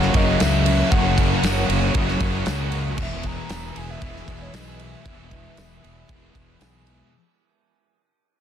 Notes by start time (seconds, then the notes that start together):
Already playing: F#2 C#3 F#3 A#3 C#4 F#4 A#4 C#5 F#5 C#6
0.02 snare
0.14 F#1 C#3 F#3 C#4 D#5, kick, ride
0.40 C#2 F#2 C#3 F#3 A#3 C#4 F#4 E5, snare, ride, tambourine
0.65 F#3 C#4 E5, ride
0.70 C#3
0.91 F#1 F#2 C#3 F#3 A#3 C#4 F#5 D#6, kick, ride
0.95 F#3 F#4
1.17 C#3 F#3 C#4, kick, ride
1.43 F#1 F#2 C#3 F#3 A#3 C#4 F#4, snare, ride, tambourine
1.68 F#1 C#3 F#3 A#3 C#4 F#4, ride
1.73 F#3
1.94 F#1 F#2 C#3 F#3 A#3 C#4 F#4, kick, ride
2.09 snare
2.20 F#1 C#3 F#3 C#4, kick, ride
2.46 C#2 F#2 C#3 F#3 A#3 C#4 F#4, snare, ride, tambourine
2.71 C#3 F#3 C#4, ride
2.98 E1 E2 B2 E3 G#3 B3 E4 G#4 B4 E5 G#5 E6, kick, crash
3.23 B2 E3 B3 A#5, kick, ride
3.49 E1 E2 B2 E3 G#3 B3 E4 G#4, snare, ride, tambourine
3.75 E1 B2 E3 B3 E4 G#4 G#5, ride
3.90 E5
4.01 E1 E2 B2 E3 G#3 B3 E4 G#4, kick, ride
4.16 snare
4.28 E1 B2 E3 E4, kick, ride
4.42 C#5
4.53 B1 E2 B2 E3 G#3 B3 E4 G#4 D#5, snare, ride, tambourine
4.79 B2 E3 E4 E5, ride
5.05 E1 E2 B2 E3 G#3 B3 E4 G#4, kick, ride
5.31 B2 E3 B3, kick, ride
5.56 E1 E2 B2 E3 G#3 B3 E4 G#4, snare, ride, tambourine
5.82 E1 B2 E3 B3 E4 G#4, ride
6.08 E1 E2 B2 E3 G#3 B3 E4 G#4, kick, ride
6.12 E3
6.34 E1 B2 E3 E4, kick, ride
6.60 B1 E2 B2 E3 G#3 B3 E4 G#4, snare, ride, tambourine
6.86 B2 E3 E4, ride